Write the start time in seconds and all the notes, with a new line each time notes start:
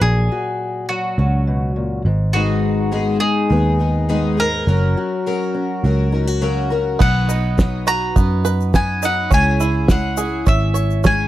Already playing: F#3
0.01 A#1 A#2 G#4
0.32 F#4
0.89 F#3 F#4
1.18 C#2 C#4
1.47 B2
1.76 A#2
2.05 G#1 G#2
2.33 G#2 D#3 G#3 B3 D#4 F#4 G#4
2.92 G#2 D#3 G#3 B3 D#4 G#4
3.20 D#4 G#4
3.50 D#2 G#3 B3 D#4 G#4
3.79 D#3 G#3 B3 D#4 G#4
4.09 G#2 D#3 G#3 B3 D#4 G#4
4.37 G#2 G#3 B3 D#4 G#4 A#4
4.67 F#1 F#3 C#4 F#4 A#4
4.97 F#4
5.26 F#3 C#4 F#4 A#4
5.54 C#4
5.84 C#2 F#3 C#4 F#4 A#4
6.12 C#4 D#4 F#4 A#4
6.27 F#4
6.41 C#3 F#3 C#4 F#4 A#4
6.70 C#4 F#4 A#4
6.99 B1 B2 D#3 F#3 B3 D#4 B4 F#5, kick, crash, shaker
7.29 F#3 B3 D#4 B4, shaker
7.57 F#3 B3 D#4 B4, kick, snare, shaker
7.87 F#3 B3 D#4 F#4 B4 A#5, shaker
8.16 F#2 B3, kick, shaker
8.45 B4, shaker
8.61 shaker
8.74 B3 D#4 B4 G#5, kick, snare, shaker
9.03 F#3 B3 D#4 B4 F#5, shaker
9.31 C#2 C#3 G#3 C#4 E4 G#4 G#5, kick, shaker
9.60 C#4 E4 G#4, shaker
9.88 G#3 C#4 E4 G#4 F#5, kick, snare, shaker
10.17 C#4 E4 G#4, shaker
10.47 G#1 C#4 E5, kick, shaker
10.74 C#5, shaker
10.91 shaker
11.04 G#3 C#4 E4 G#4 G#5, kick, snare, shaker